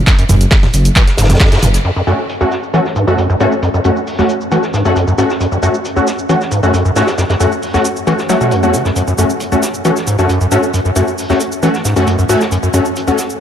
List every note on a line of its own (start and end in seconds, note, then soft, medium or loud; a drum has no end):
0.07 0.13 F#2 medium
0.07 kick loud
0.07 clap loud
0.07 closed hi-hat medium
0.07 shaker soft
0.19 0.25 F#2 medium
0.19 closed hi-hat medium
0.29 0.45 F#1 loud
0.29 0.36 F#2 loud
0.29 closed hi-hat medium
0.29 mid tom medium
0.29 open hi-hat loud
0.29 shaker medium
0.41 closed hi-hat medium
0.41 shaker soft
0.51 kick loud
0.51 snare loud
0.51 clap loud
0.51 closed hi-hat medium
0.51 open hi-hat medium
0.51 shaker soft
0.63 0.67 E2 medium
0.63 snare medium
0.63 mid tom medium
0.63 open hi-hat medium
0.74 0.89 F#1 medium
0.74 closed hi-hat medium
0.74 open hi-hat loud
0.74 shaker medium
0.85 closed hi-hat medium
0.85 shaker soft
0.96 1.02 E3 loud
0.96 kick loud
0.96 clap loud
0.96 closed hi-hat medium
0.96 mid tom medium
0.96 shaker soft
1.07 snare soft
1.07 closed hi-hat medium
1.17 1.34 F#1 medium
1.17 1.28 G#2 medium
1.17 snare medium
1.17 closed hi-hat medium
1.17 open hi-hat loud
1.17 shaker medium
1.24 snare medium
1.24 closed hi-hat medium
1.29 1.39 F#2 medium
1.29 snare medium
1.29 closed hi-hat medium
1.29 mid tom medium
1.29 shaker soft
1.35 snare medium
1.35 closed hi-hat medium
1.40 1.50 F#2 medium
1.40 kick loud
1.40 snare medium
1.40 clap loud
1.40 closed hi-hat medium
1.40 shaker soft
1.46 snare medium
1.46 closed hi-hat medium
1.51 1.58 F#2 loud
1.51 snare medium
1.51 closed hi-hat medium
1.57 snare medium
1.57 closed hi-hat medium
1.63 1.78 F#1 medium
1.63 1.69 G#2 medium
1.63 closed hi-hat medium
1.63 mid tom medium
1.63 open hi-hat loud
1.63 shaker medium
1.74 snare medium
1.74 closed hi-hat medium
1.74 shaker soft
1.85 1.91 F#2 medium
1.85 closed hi-hat medium
1.85 crash medium
1.85 shaker soft
1.96 2.02 F#2 medium
1.96 shaker soft
2.07 2.13 F#2 loud
2.07 2.19 A3 medium
2.07 2.19 C#4 medium
2.07 2.19 F#4 medium
2.07 closed hi-hat medium
2.07 shaker medium
2.19 shaker soft
2.29 closed hi-hat medium
2.29 shaker soft
2.41 2.44 E2 medium
2.41 2.52 A3 medium
2.41 2.52 C#4 medium
2.41 2.52 F#4 medium
2.41 shaker soft
2.51 snare soft
2.51 closed hi-hat medium
2.51 shaker medium
2.63 shaker soft
2.74 2.80 E3 loud
2.74 2.86 A3 medium
2.74 2.86 C#4 medium
2.74 2.86 F#4 medium
2.74 closed hi-hat medium
2.74 shaker soft
2.85 snare soft
2.85 shaker soft
2.96 3.06 G#2 medium
2.96 closed hi-hat medium
2.96 shaker medium
3.07 3.16 F#2 medium
3.07 3.19 A3 medium
3.07 3.19 C#4 medium
3.07 3.19 F#4 medium
3.07 shaker soft
3.18 3.28 F#2 medium
3.18 closed hi-hat medium
3.18 shaker soft
3.30 3.36 F#2 loud
3.30 shaker soft
3.40 3.47 G#2 medium
3.40 3.53 A3 medium
3.40 3.53 C#4 medium
3.40 3.53 F#4 loud
3.40 closed hi-hat medium
3.40 shaker medium
3.52 shaker soft
3.62 3.69 F#2 medium
3.62 closed hi-hat medium
3.62 shaker soft
3.74 3.80 F#2 medium
3.74 shaker soft
3.84 3.91 F#2 loud
3.84 3.97 A3 medium
3.84 3.97 C#4 medium
3.84 3.97 F#4 medium
3.84 closed hi-hat medium
3.84 shaker medium
3.96 shaker soft
4.07 open hi-hat medium
4.07 shaker soft
4.19 4.22 E2 medium
4.19 4.30 A3 medium
4.19 4.30 C#4 medium
4.19 4.30 F#4 medium
4.19 snare medium
4.19 shaker soft
4.29 closed hi-hat medium
4.29 shaker medium
4.41 shaker soft
4.51 4.58 E3 loud
4.51 4.64 A3 medium
4.51 4.64 C#4 medium
4.51 4.64 F#4 medium
4.51 closed hi-hat medium
4.51 shaker soft
4.63 snare soft
4.63 shaker soft
4.73 4.83 G#2 medium
4.73 snare medium
4.73 closed hi-hat medium
4.73 shaker medium
4.85 4.94 F#2 medium
4.85 4.97 A3 medium
4.85 4.97 C#4 medium
4.85 4.97 F#4 medium
4.85 shaker soft
4.96 5.06 F#2 medium
4.96 closed hi-hat medium
4.96 shaker soft
5.08 5.13 F#2 loud
5.08 shaker soft
5.18 5.25 G#2 medium
5.18 5.30 A3 medium
5.18 5.30 C#4 medium
5.18 5.30 F#4 loud
5.18 closed hi-hat medium
5.18 shaker medium
5.30 snare medium
5.30 shaker soft
5.40 5.47 F#2 medium
5.40 closed hi-hat medium
5.40 shaker soft
5.52 5.58 F#2 medium
5.52 shaker soft
5.63 5.69 F#2 loud
5.63 5.75 A3 medium
5.63 5.75 C#4 medium
5.63 5.75 F#4 medium
5.63 closed hi-hat medium
5.63 shaker medium
5.74 shaker soft
5.85 closed hi-hat medium
5.85 shaker soft
5.96 6.00 E2 medium
5.96 6.08 A3 medium
5.96 6.08 C#4 medium
5.96 6.08 F#4 medium
5.96 shaker soft
6.07 snare soft
6.07 closed hi-hat medium
6.07 shaker medium
6.19 shaker soft
6.29 6.36 E3 loud
6.29 6.42 A3 medium
6.29 6.42 C#4 medium
6.29 6.42 F#4 medium
6.29 closed hi-hat medium
6.29 shaker soft
6.41 snare soft
6.41 shaker soft
6.51 6.61 G#2 medium
6.51 closed hi-hat medium
6.51 shaker medium
6.63 6.72 F#2 medium
6.63 6.75 A3 medium
6.63 6.75 C#4 medium
6.63 6.75 F#4 medium
6.63 shaker soft
6.74 6.83 F#2 medium
6.74 closed hi-hat medium
6.74 shaker soft
6.85 6.91 F#2 medium
6.85 shaker soft
6.96 7.02 G#2 medium
6.96 7.08 A3 medium
6.96 7.08 C#4 medium
6.96 7.08 F#4 loud
6.96 snare loud
6.96 closed hi-hat medium
6.96 shaker medium
7.07 snare loud
7.07 closed hi-hat medium
7.07 shaker soft
7.18 7.25 F#2 medium
7.18 snare medium
7.18 closed hi-hat medium
7.18 shaker soft
7.30 7.36 F#2 medium
7.30 snare loud
7.30 closed hi-hat medium
7.30 shaker soft
7.40 7.47 F#2 loud
7.40 7.53 A3 medium
7.40 7.53 C#4 medium
7.40 7.53 F#4 medium
7.40 closed hi-hat medium
7.40 shaker medium
7.52 shaker soft
7.62 open hi-hat medium
7.62 shaker soft
7.74 7.78 E2 medium
7.74 7.86 A3 medium
7.74 7.86 C#4 medium
7.74 7.86 F#4 medium
7.74 snare medium
7.74 shaker soft
7.85 closed hi-hat medium
7.85 shaker medium
7.96 shaker soft
8.07 8.13 E3 loud
8.07 8.19 A3 medium
8.07 8.19 C#4 medium
8.07 8.19 F#4 medium
8.07 closed hi-hat medium
8.07 shaker soft
8.19 snare soft
8.19 shaker soft
8.29 8.36 F#3 medium
8.29 8.39 A3 medium
8.29 8.39 C#4 medium
8.29 8.39 F#4 loud
8.29 snare medium
8.29 closed hi-hat medium
8.29 shaker medium
8.41 8.53 B2 loud
8.41 8.60 A3 medium
8.41 8.60 C#4 medium
8.41 8.60 F#4 medium
8.41 shaker soft
8.51 8.65 F#2 medium
8.51 closed hi-hat medium
8.51 shaker soft
8.63 8.75 E2 medium
8.63 8.75 A3 medium
8.63 8.75 C#4 medium
8.63 8.75 F#4 loud
8.63 shaker soft
8.73 8.83 C#3 medium
8.73 closed hi-hat medium
8.73 shaker medium
8.85 8.91 F#2 medium
8.85 snare medium
8.85 shaker soft
8.96 9.02 F#2 medium
8.96 closed hi-hat medium
8.96 shaker soft
9.08 9.13 F#2 medium
9.08 shaker soft
9.18 9.25 F#2 loud
9.18 9.30 A3 medium
9.18 9.30 C#4 medium
9.18 9.30 F#4 medium
9.18 closed hi-hat medium
9.18 shaker medium
9.30 shaker soft
9.40 closed hi-hat medium
9.40 shaker soft
9.52 9.56 E2 medium
9.52 9.63 A3 medium
9.52 9.63 C#4 medium
9.52 9.63 F#4 medium
9.52 shaker soft
9.62 snare medium
9.62 closed hi-hat medium
9.62 shaker medium
9.74 shaker soft
9.85 9.91 E3 loud
9.85 9.97 A3 medium
9.85 9.97 C#4 medium
9.85 9.97 F#4 medium
9.85 closed hi-hat medium
9.85 shaker soft
9.96 snare soft
9.96 shaker soft
10.07 10.17 G#2 medium
10.07 closed hi-hat medium
10.07 shaker medium
10.19 10.27 F#2 medium
10.19 10.30 A3 medium
10.19 10.30 C#4 medium
10.19 10.30 F#4 medium
10.19 shaker soft
10.29 10.39 F#2 medium
10.29 closed hi-hat medium
10.29 shaker soft
10.41 10.47 F#2 loud
10.41 shaker soft
10.51 10.58 G#2 medium
10.51 10.64 A3 loud
10.51 10.64 C#4 medium
10.51 10.64 F#4 loud
10.51 closed hi-hat medium
10.51 shaker medium
10.63 shaker soft
10.74 10.80 F#2 medium
10.74 closed hi-hat medium
10.74 shaker soft
10.85 10.91 F#2 medium
10.85 shaker soft
10.95 11.02 F#2 loud
10.95 11.08 A3 medium
10.95 11.08 C#4 medium
10.95 11.08 F#4 medium
10.95 closed hi-hat medium
10.95 shaker medium
11.07 shaker soft
11.18 open hi-hat medium
11.18 shaker soft
11.30 11.33 E2 medium
11.30 11.41 A3 medium
11.30 11.41 C#4 medium
11.30 11.41 F#4 medium
11.30 snare medium
11.30 shaker soft
11.40 closed hi-hat medium
11.40 shaker medium
11.52 shaker soft
11.63 11.69 E3 loud
11.63 11.75 A3 medium
11.63 11.75 C#4 medium
11.63 11.75 F#4 medium
11.63 closed hi-hat medium
11.63 shaker soft
11.74 snare soft
11.74 shaker soft
11.85 11.94 G#2 medium
11.85 snare soft
11.85 closed hi-hat medium
11.85 shaker medium
11.96 12.05 F#2 medium
11.96 12.08 A3 medium
11.96 12.08 C#4 medium
11.96 12.08 F#4 medium
11.96 shaker soft
12.07 12.17 F#2 medium
12.07 closed hi-hat medium
12.07 shaker soft
12.19 12.25 F#2 loud
12.19 shaker soft
12.29 12.36 G#2 medium
12.29 12.42 A3 loud
12.29 12.42 C#4 medium
12.29 12.42 F#4 loud
12.29 closed hi-hat medium
12.29 shaker medium
12.41 snare medium
12.41 shaker soft
12.52 12.58 F#2 medium
12.52 closed hi-hat medium
12.52 shaker soft
12.63 12.69 F#2 medium
12.63 shaker soft
12.73 12.80 F#2 loud
12.73 12.86 A3 medium
12.73 12.86 C#4 medium
12.73 12.86 F#4 medium
12.73 closed hi-hat medium
12.73 shaker medium
12.85 shaker soft
12.96 closed hi-hat medium
12.96 shaker soft
13.07 13.11 E2 medium
13.07 13.19 A3 medium
13.07 13.19 C#4 medium
13.07 13.19 F#4 medium
13.07 shaker soft
13.18 snare soft
13.18 closed hi-hat medium
13.18 shaker medium
13.30 shaker soft